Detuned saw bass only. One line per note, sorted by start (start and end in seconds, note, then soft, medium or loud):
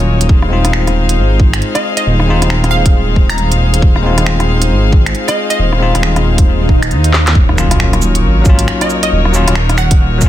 0.08 0.28 D#1 loud
0.29 1.20 D#1 loud
1.18 1.61 G#1 loud
2.06 2.40 D#1 loud
2.42 3.59 D#1 medium
3.60 3.81 D#1 loud
3.83 4.72 D#1 loud
4.70 5.14 G#1 loud
5.59 5.93 D#1 loud
5.95 6.69 D#1 loud
6.69 6.93 D#1 loud
6.92 7.34 D#2 loud
7.35 8.26 D#1 loud
8.24 8.67 G#1 loud
9.12 9.46 D#1 loud
9.47 10.29 D#1 medium